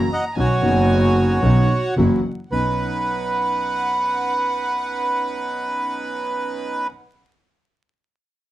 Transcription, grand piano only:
0.36 0.59 B1 medium
0.36 0.59 B2 medium
0.36 0.59 D#3 soft
0.36 0.59 B3 soft
0.36 0.59 C#4 soft
0.36 0.59 F#4 medium
0.60 1.39 F#1 medium
0.60 1.39 F#2 medium
0.60 1.38 D#3 medium
0.60 1.39 B3 medium
0.60 1.39 C#4 medium
0.65 1.40 F#4 medium
1.42 1.66 B1 medium
1.42 1.66 B2 medium
1.42 1.65 D#3 medium
1.42 1.65 B3 medium
1.42 1.66 C#4 medium
1.42 1.66 F#4 medium
1.97 2.20 F#2 medium
1.97 2.20 E3 medium
1.97 2.21 F#3 medium
1.97 2.21 A#3 medium
1.97 2.21 C#4 medium
1.97 2.21 F#4 medium
2.52 6.88 B1 medium
2.52 6.88 B3 medium
2.52 6.88 C#4 medium
2.52 6.88 D#4 medium

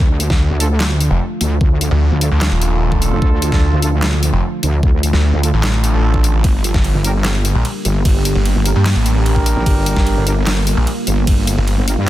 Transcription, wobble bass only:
0.00 0.28 D2 loud
0.50 1.09 D2 loud
1.41 1.59 D2 loud
1.61 1.90 D2 loud
2.11 2.30 D2 loud
3.12 3.20 F1 loud
3.22 3.51 D2 loud
3.72 4.31 D2 loud
4.63 4.81 D2 loud
4.83 5.12 D2 loud
5.33 5.52 D2 loud
6.44 6.73 G1 loud
6.94 7.53 G1 loud
7.85 8.04 G1 loud
8.05 8.34 G1 loud
8.56 8.74 G1 loud
9.56 9.65 A#1 loud
9.66 9.95 G1 loud
10.17 10.75 G1 loud
11.07 11.26 G1 loud
11.27 11.56 G1 loud
11.78 11.96 G1 medium
11.98 12.06 G2 loud

